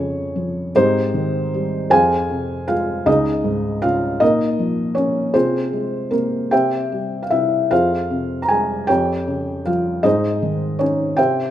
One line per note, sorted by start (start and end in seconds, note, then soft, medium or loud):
0.00 0.71 F2 medium
0.00 0.73 C#3 medium
0.00 0.71 C#4 medium
0.00 0.71 F4 medium
0.00 0.71 G#4 medium
0.00 0.71 C#5 medium
0.36 0.74 F3 soft
0.75 1.88 G#2 medium
0.75 1.88 C4 medium
0.75 1.88 D#4 medium
0.75 1.87 G4 medium
0.75 1.88 C5 loud
1.14 1.89 D#3 soft
1.54 1.91 G3 soft
1.90 3.04 F2 medium
1.90 2.65 G#4 medium
1.90 2.64 C5 medium
1.90 2.64 F5 medium
1.90 2.71 G#5 loud
2.30 3.05 C3 soft
2.68 3.06 G#3 medium
2.68 3.05 F4 medium
2.68 3.08 F5 medium
3.06 4.17 C#2 medium
3.06 3.79 D#4 medium
3.06 3.79 G#4 medium
3.06 3.85 D#5 medium
3.44 4.18 G#2 medium
3.82 4.20 C#3 soft
3.82 4.19 F4 medium
3.82 4.22 F5 medium
4.20 5.32 A#2 medium
4.20 4.93 D#4 medium
4.20 4.93 A#4 medium
4.20 4.92 D#5 medium
4.59 5.33 F3 soft
4.95 5.34 A#3 soft
4.95 5.32 C#4 medium
4.95 5.35 C#5 medium
5.34 6.10 C3 medium
5.34 6.08 C4 medium
5.34 6.09 F4 medium
5.34 6.08 G#4 medium
5.34 6.14 C5 medium
5.73 6.49 G#3 soft
6.11 6.50 C3 soft
6.11 6.49 A#3 medium
6.11 6.52 A#4 medium
6.51 7.30 C3 medium
6.51 7.21 G4 medium
6.51 7.21 C5 medium
6.51 7.21 E5 medium
6.51 7.26 G5 medium
6.92 7.69 G3 soft
7.23 7.31 F5 medium
7.30 7.70 C3 soft
7.30 7.69 E4 soft
7.30 7.72 E5 medium
7.71 8.85 F2 medium
7.71 8.40 F4 medium
7.71 8.40 G#4 medium
7.71 8.40 C5 medium
7.71 8.45 F5 medium
8.10 8.86 C3 soft
8.42 8.50 A#5 medium
8.48 8.88 G#3 soft
8.48 8.86 G#4 medium
8.48 8.85 G#5 medium
8.87 10.01 F2 medium
8.87 9.62 G4 medium
8.87 9.62 C#5 medium
8.87 9.67 G5 medium
9.28 10.02 C#3 soft
9.66 10.03 F3 soft
9.66 10.02 F4 medium
9.66 10.05 F5 medium
10.03 11.14 G#2 medium
10.03 10.77 D#4 medium
10.03 10.76 G#4 medium
10.03 10.77 C5 medium
10.03 10.82 D#5 medium
10.42 11.16 D#3 soft
10.79 11.15 C#4 medium
10.79 11.17 D#4 medium
10.79 11.18 C#5 medium
11.17 11.51 C3 medium
11.17 11.51 G4 medium
11.17 11.51 C5 medium
11.17 11.51 E5 medium
11.17 11.51 G5 medium